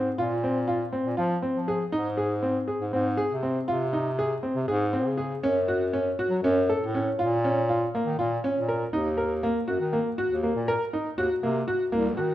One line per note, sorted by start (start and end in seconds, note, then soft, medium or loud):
0.00 0.12 G#2 medium
0.18 0.91 A#2 medium
0.18 0.32 F4 medium
0.44 0.57 C4 medium
0.68 0.81 F4 medium
0.93 1.06 C4 medium
1.06 1.16 A#2 medium
1.17 1.39 F3 medium
1.17 1.31 F4 medium
1.42 1.56 C4 medium
1.55 1.86 F3 medium
1.68 1.81 G#4 medium
1.92 2.66 G#2 medium
1.92 2.06 D#4 medium
2.17 2.31 G#4 medium
2.43 2.56 C4 medium
2.68 2.81 G#4 medium
2.81 2.91 G#2 medium
2.93 3.24 G#2 medium
2.93 3.07 C4 medium
3.17 3.31 G#4 medium
3.31 3.62 C3 medium
3.43 3.56 C4 medium
3.68 4.41 C3 medium
3.68 3.81 F4 medium
3.93 4.07 D#4 medium
4.19 4.32 G#4 medium
4.43 4.56 C4 medium
4.55 4.66 C3 medium
4.68 5.07 G#2 medium
4.68 4.82 G#4 medium
4.93 5.07 C4 medium
5.06 5.37 C#3 medium
5.18 5.31 G#4 medium
5.42 6.15 F#2 medium
5.42 5.57 C#4 medium
5.68 5.82 F#4 medium
5.93 6.07 C#4 medium
6.19 6.32 F#4 medium
6.30 6.41 F#3 medium
6.43 6.74 F#2 loud
6.43 6.57 C#4 medium
6.69 6.83 A4 medium
6.81 7.12 A2 medium
6.95 7.08 C#4 medium
7.19 7.91 A#2 medium
7.19 7.32 F4 medium
7.44 7.58 C#4 medium
7.69 7.82 F4 medium
7.95 8.08 A#3 medium
8.06 8.16 D#3 medium
8.19 8.39 A#2 medium
8.19 8.32 F4 medium
8.44 8.57 C#4 medium
8.55 8.87 A#2 medium
8.69 8.82 A#4 medium
8.92 9.55 D#2 medium
8.92 9.07 D#4 medium
9.17 9.31 A#4 medium
9.43 9.57 A#3 medium
9.68 9.79 F#2 medium
9.68 9.81 F#4 medium
9.81 10.02 D#3 medium
9.93 10.07 A#3 medium
10.18 10.32 F#4 medium
10.30 10.51 D#2 medium
10.43 10.57 A#3 medium
10.56 10.77 A#2 medium
10.68 10.82 A#4 medium
10.93 11.07 D#4 medium
11.18 11.28 D#2 medium
11.18 11.31 F#4 medium
11.43 11.64 C3 medium
11.43 11.57 A#3 medium
11.68 11.81 F#4 medium
11.92 12.19 C2 medium
11.92 12.06 A#3 medium
12.17 12.35 D#3 medium
12.17 12.31 F#4 medium